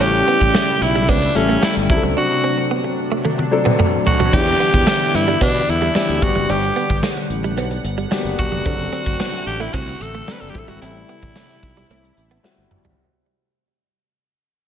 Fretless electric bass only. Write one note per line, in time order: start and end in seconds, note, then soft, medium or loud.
0.00 0.21 A1 loud
0.41 0.51 A1 medium
0.81 1.09 B1 medium
1.09 1.29 C#2 loud
1.36 1.56 A1 medium
1.77 1.87 G1 medium
1.90 2.00 D2 medium
2.03 2.13 C#2 medium
4.33 4.53 E2 loud
4.74 4.84 E2 loud
5.14 5.35 G2 medium
5.41 5.61 B2 loud
5.69 5.89 E2 medium
6.09 6.19 D2 medium
6.22 6.32 G1 loud
6.35 6.46 F#1 medium
6.50 6.70 G1 loud
6.90 7.00 G1 loud
7.30 7.57 A1 medium
7.57 7.78 B1 loud
7.84 8.05 G1 loud
8.24 8.35 F#1 medium
8.39 8.49 E1 medium
8.52 8.62 F1 medium
8.66 8.86 F#1 loud
9.07 9.17 F#1 loud
9.47 9.67 A1 medium
9.74 9.94 C2 loud
10.01 10.21 A1 loud
10.42 10.52 F#1 medium
10.55 10.65 A1 loud
10.69 10.79 G#1 medium
10.82 11.02 A1 loud
11.23 11.33 A1 medium
11.63 11.83 B1 medium
11.90 12.10 C2 medium
12.17 12.38 A1 medium
12.58 12.68 G1 medium
12.71 12.81 G1 medium
12.85 12.95 G#1 medium